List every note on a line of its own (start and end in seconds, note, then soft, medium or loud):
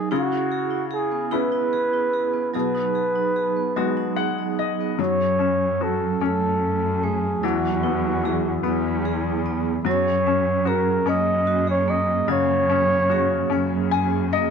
0.00 0.11 F#3 soft
0.00 0.12 A#3 soft
0.00 0.12 B3 soft
0.00 0.12 D#4 soft
0.00 0.19 D#4 medium
0.11 2.51 C#3 medium
0.11 0.32 E4 medium
0.11 0.88 F#4 medium
0.11 0.50 G#4 medium
0.32 0.69 E4 soft
0.51 0.89 G#4 medium
0.70 1.31 E4 soft
0.91 1.30 G#4 medium
0.91 1.31 G#4 medium
1.12 2.32 B3 soft
1.31 2.51 B3 soft
1.31 2.51 C#4 soft
1.31 1.52 E4 medium
1.31 2.51 E4 soft
1.31 1.72 G#4 medium
1.31 2.52 B4 medium
1.52 1.92 E4 soft
1.73 2.12 G#4 medium
1.93 2.63 E4 soft
2.13 2.53 G#4 soft
2.33 2.62 B3 soft
2.54 4.96 B2 medium
2.54 3.75 F#3 medium
2.54 2.94 G#4 medium
2.58 4.16 B4 medium
2.75 3.14 D#4 soft
2.95 3.35 G#4 soft
3.15 3.96 D#4 soft
3.36 3.76 G#4 medium
3.56 4.79 B3 soft
3.76 4.98 F#3 medium
3.76 4.95 G#3 soft
3.76 4.95 B3 soft
3.76 4.96 F#4 soft
3.76 4.16 G#4 soft
3.97 4.37 D#4 soft
4.16 4.58 G#4 soft
4.16 4.55 F#5 soft
4.38 5.08 D#4 soft
4.59 5.08 G#4 soft
4.59 4.97 D#5 soft
4.80 5.08 B3 soft
4.99 6.17 F#2 medium
4.99 7.39 F#3 medium
4.99 7.42 F#3 medium
4.99 5.84 C#5 medium
5.39 6.20 C#4 soft
5.39 7.51 C#4 soft
5.81 7.39 F#4 soft
5.81 6.22 A4 medium
6.21 7.39 F#2 medium
6.21 7.02 A3 soft
6.21 7.40 C#4 soft
6.25 7.05 A4 medium
7.03 7.52 A3 soft
7.03 7.47 G#4 medium
7.43 8.61 E2 medium
7.43 8.22 E3 medium
7.43 9.85 F#3 medium
7.43 9.06 F#4 medium
7.83 8.62 B3 soft
7.83 9.94 E4 soft
8.24 9.81 E3 soft
8.24 9.04 G#4 medium
8.63 9.81 E2 medium
8.63 9.81 B3 soft
8.63 9.45 B3 soft
9.05 9.94 G#4 medium
9.46 9.94 B3 medium
9.85 11.03 F#2 medium
9.85 12.25 F#3 medium
9.85 12.27 F#3 medium
9.85 10.69 C#5 medium
10.27 12.68 C#4 soft
10.27 11.04 C#4 soft
10.65 12.25 F#4 soft
10.65 11.48 G#4 medium
10.65 11.10 A#4 medium
11.06 12.25 F#2 medium
11.06 11.87 A#3 medium
11.06 12.65 C#4 medium
11.06 11.69 D#5 loud
11.47 11.66 F#4 medium
11.67 13.10 G#4 soft
11.67 11.92 C#5 medium
11.88 13.51 A#3 medium
11.88 12.30 D#5 medium
12.28 13.47 F#2 medium
12.28 14.50 C#3 medium
12.28 14.50 F#3 medium
12.32 13.90 C#5 loud
12.70 13.48 C#4 medium
12.70 14.50 C#4 soft
13.10 14.50 F#4 soft
13.10 13.91 G#4 medium
13.50 14.50 F#2 medium
13.50 14.31 A#3 medium
13.50 14.50 C#4 medium
13.91 14.50 G#4 medium
13.91 14.30 G#5 medium
14.33 14.50 A#3 medium
14.33 14.50 D#5 medium